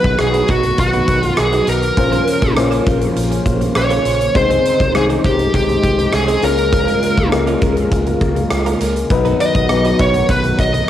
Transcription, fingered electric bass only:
0.04 B1
0.20 B1
0.49 B1
0.78 B1
1.08 B1
1.38 B1
1.68 B1
1.97 A#1
2.42 A#1
2.57 A#1
2.87 A#1
3.16 A#1
3.46 A#1
3.76 A#1
4.05 A#1
4.35 C2
4.80 C2
4.94 C2
5.24 C2
5.54 C2
5.83 C2
6.13 C2
6.43 C#2
7.18 C#2
7.32 C#2
7.62 C#2
7.92 C#2
8.21 C#2
8.51 C#2
8.81 C#2
9.10 B1
9.55 B1
9.70 B1
9.99 B1
10.29 B1
10.59 B1

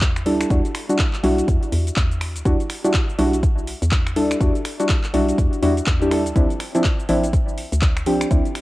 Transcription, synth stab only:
0.26 G3 D4 E4 A4
0.50 G3 D4 E4 F#4
0.89 G3 D4 E4 F#4
1.23 G3 D4 E4 F#4
2.45 G3 D4 E4 F#4
2.84 G3 D4 E4 F#4
3.18 G3 D4 E4 F#4
4.16 G3 D4 E4 A4
4.40 G3 D4 E4 F#4
4.80 G3 D4 E4 F#4
5.14 G3 D4 E4 F#4
5.62 G3 D4 E4 F#4
6.02 G3 D4 E4 G4
6.11 G3 D4 E4 A4
6.36 F3 C4 D4 E4
6.75 F3 C4 D4 E4
7.09 F3 C4 D4 E4
8.06 F3 C4 D4 G4
8.31 F3 C4 D4 E4

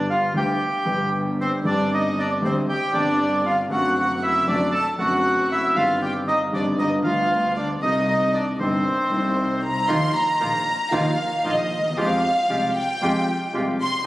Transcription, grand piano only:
Already playing: G1 G2 D3 G3 B3 G4
0.33 D2 D3 G3 B3 G4
0.84 G1 G2 D3 G3 B3 G4
1.63 G1 G2 D3 G3 C4
1.67 G4
2.42 D2 D3 G3 C4 G4
2.92 G1 G2 D3 G3 C4 G4
3.68 F#2 D3 F#3 A3 C4 F#4
4.48 F#2 D3 F#3 A3 C4 F#4
4.96 F#2 D3 F#3 A3 C4
5.01 F#4
5.74 G1 G2 D#3 G3 C4 G4
6.52 G1 G2 D#3 G3 C4 G4
6.77 G1 G2 D3 G3 B3 F4
7.01 D2 D3 G3 B3
7.06 F4
7.81 C2 C3 G3 A#3 D#4
8.59 G1 G2 C3 G3 A#3 D#4
9.09 C2 C3 G3 A#3 D#4
9.89 D#2 D#3 F3 A#3 F4
10.41 A#1 A#2 D#3 F3 A#3 F4
10.91 D#2 D#3 F3 A#3 F4
11.44 A#1 A#2 D#3 F3 A#3 F4
11.79 D2
11.84 D#2
11.91 E2
11.97 F2 F3 G#3 C4 G4
12.49 C2 C3 F3 G#3 C4 G4
13.02 F2 F3 G#3 C4 G4
13.53 C2 C3 F3 G#3 C4 G4

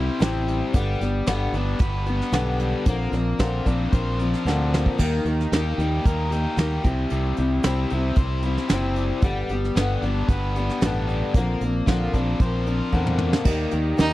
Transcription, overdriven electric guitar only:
Already playing: C4 E4 C5
0.22 C4
0.48 G3
0.75 G3
1.27 B3
1.54 D4
1.80 B4
2.07 B3
2.33 D4
2.60 G3
2.87 A#3
3.40 F4
3.66 D4
3.92 C5
4.19 F4
4.47 D4
4.73 A#3
5.00 D#3
5.53 G4
5.80 G3
6.05 A#4
6.32 G4
6.58 G3
6.84 C3
7.11 C3
7.64 E4
7.91 C4
8.17 C5
8.43 E4
8.70 C4
8.97 G3
9.23 G3
9.75 B3
10.01 D4
10.28 B4
10.54 B3
10.82 D4
11.07 G3
11.35 A#3
11.86 F4
12.13 D4
12.41 C5
12.68 F4
12.94 D4
13.21 A#3
13.46 D#3
14.00 G4

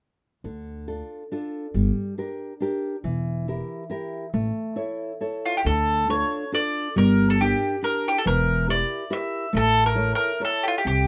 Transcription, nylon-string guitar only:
0.44 D3
0.88 D4 F4 A4
1.32 D4 F4 A4
1.74 G3
2.18 D4 G4 A#4
2.60 D4 G4 A#4
3.04 E3
3.48 E4 G4 A#4
3.90 E4 G4 A#4
4.34 A3
4.76 E4 A4 C#5
5.20 E4 A4 C#5
5.65 D3
6.08 D4 F4 A4
6.52 D4 F4 A4
6.96 G3
7.41 D4 G4 A#4
7.82 D4 G4 A#4
8.25 E3
8.68 E4 G4 A#4
9.10 E4 G4 A#4
9.53 A3
9.95 E4 A4 C#5
10.40 E4 A4 C#5
10.85 C4

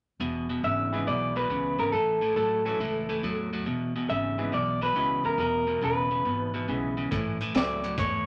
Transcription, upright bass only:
0.20 E1
0.63 G#1
1.07 B1
1.50 C#2
1.78 G#1
1.93 A1
2.36 A1
2.79 C#2
3.23 E2
3.66 E1
4.10 G#1
4.53 B1
4.96 C#2
5.24 C#2
5.38 E1
5.81 E1
6.25 G#1
6.69 B1
7.12 A1
7.54 C#2
7.98 E2

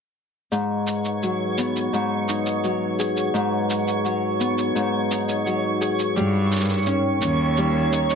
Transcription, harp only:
0.52 G#2
1.23 F#3
1.58 B3
1.93 G#2
2.28 D#4
2.64 F#3
2.99 G#4
3.34 G#2
4.05 F#3
4.40 B3
4.75 G#2
5.11 D#4
5.46 F#3
5.81 G#4
6.16 G3
6.87 C#4
7.22 C#4
7.58 G3
7.93 D#4

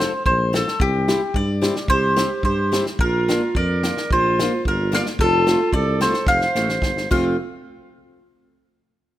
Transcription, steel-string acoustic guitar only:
0.00 C4 F4 A4
0.53 C4 F4 A4
1.08 C4 E4 G4
1.62 C4 E4 G4
2.16 C4 E4 G4
2.72 C4 E4 G4
3.28 A#3 D4 F4
3.84 A#3 D4 F4
4.40 A#3 D4 F4
4.92 A#3 D4 F4
5.47 A3 C4 F4
6.01 A3 C4 F4
6.56 A3 C4 F4
7.11 A3 C4 F4

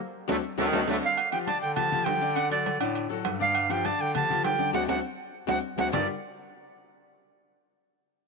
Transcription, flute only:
1.05 F5
1.32 G5
1.46 A5
1.61 G5
1.75 A5
2.04 G5
2.35 F#5
2.52 D5
3.41 F5
3.71 G5
3.85 A5
4.01 G5
4.15 A5
4.45 G5
4.74 F#5
4.89 F#5
5.49 F#5
5.79 F#5
5.93 D5

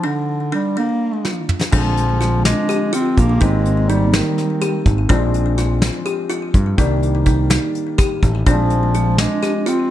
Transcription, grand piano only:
1.73 D3 F3 G#3 C4
3.41 D#3 A#3 C4 G4
5.10 F3 G#3 C4 D4
6.78 D#3 G3 A#3 D4
8.47 F3 G#3 C4 D4

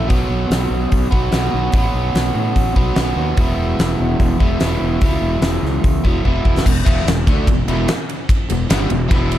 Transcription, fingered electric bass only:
0.10 B1
0.29 B1
0.50 B1
0.70 B1
0.91 B1
1.12 B1
1.33 B1
1.54 B1
1.73 A1
1.94 B1
2.14 B1
2.35 A2
2.56 A1
2.76 B1
2.97 B1
3.16 D#2
3.38 E1
3.57 E1
3.79 E1
4.00 E1
4.20 E1
4.41 E1
4.61 E1
4.82 E1
5.02 C#2
5.21 E1
5.41 E1
5.63 C#2
5.84 C#2
6.04 E1
6.26 E1
6.45 E1
6.66 E1
6.87 E1
7.05 E1
7.27 D2
7.47 E1
7.67 E1
8.50 E1
8.70 G1
8.91 E1
9.11 E1

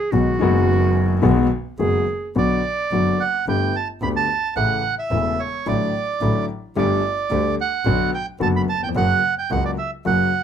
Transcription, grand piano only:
0.12 B1 B2 D#3 G#3 B3 F#4
0.39 F#1 F#2 D#3 G#3 B3 F#4
1.22 B1 B2 D#3 G#3 B3 F#4
1.79 F#1 F#2 D#3 G#3 B3 F#4
2.36 B1 B2 D3 F#3 B3 F#4
2.92 F#1 F#2 D3 F#3 B3 F#4
3.48 G1 G2 D3 A3 B3 G4
4.02 D2 D3 A3 B3 G4
4.56 A1 A2 C#3 E3 A3 E4
5.11 E1 E2 C#3 E3 A3 E4
5.66 A1 A2 D3 F#3 A3 E4
6.21 A1 A2 D3 F#3 A3 E4
6.76 G1 G2 D3 G3 A3 G4
7.31 D2 D3 G3 A3 G4
7.86 B1 B2 D3 F#3 B3 F#4
8.40 F#1 F#2 D3 F#3 B3 F#4
8.75 D#2
8.83 E2
8.89 F2
8.96 F#2 C#3 F#3 A#3 F#4
9.51 C#2 C#3 F#3 A#3 F#4
10.05 F#2 C#3 F#3 A#3 F#4

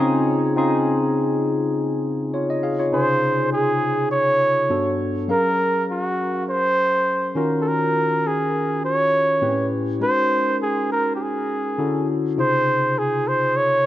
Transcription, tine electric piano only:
Already playing: C#3 C4 D#4 F4 G#4
0.56 C#3 C4 D#4 F4 G#4
2.34 F4 C#5
2.50 D#5
2.63 G#4 F5
2.79 F4 C#5
2.92 C3 C#3 D#4 F4 G#4
4.70 G2 B3 D4 F#4 A4
5.28 F#3 C#4 G#4 A#4 F5
7.35 D#3 C#4 F4 F#4 A#4
9.41 A2 C4 E4 G4 B4
9.48 C#4
10.00 G#3 C#4 D#4 F#4 A#4
11.78 D3 C#4 E4 F#4 A4
12.37 C3 C#3 D#4 F4 G#4

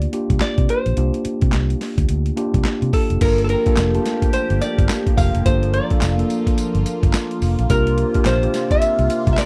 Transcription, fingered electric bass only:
0.30 C2
0.58 C3
0.86 A#1
0.97 C2
1.25 muted fingered electric bass stroke
1.42 C3
1.53 C2
1.98 D2
2.09 D2
2.54 C2
2.82 C3
3.10 F1
3.21 G1
3.77 F1
4.50 G1
4.78 G1
5.17 F1
5.35 F1
5.46 G1
6.02 F1
6.75 G1
7.03 G1
7.42 F1
7.59 A#1
7.70 C2
8.26 A#1
8.99 C2
9.27 C2

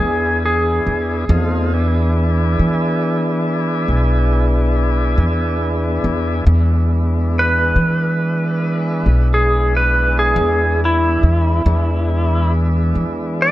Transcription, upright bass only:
0.00 E2
0.87 E2
1.29 E2
2.59 E3
3.88 B1
5.18 E2
6.04 E2
6.47 E2
7.76 E3
9.06 B1
10.36 E2
11.23 E2
11.66 E2
12.95 E3

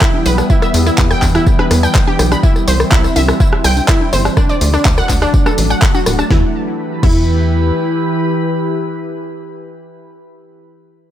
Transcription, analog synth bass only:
0.26 B1
0.74 E2
0.98 E2
1.22 E2
1.71 E2
2.19 B1
2.68 C2
2.92 C2
3.16 C2
3.64 C2
4.13 G1
4.61 D2
4.85 D2
5.10 D2
5.58 A1
6.06 D1
6.30 E2
7.03 E2

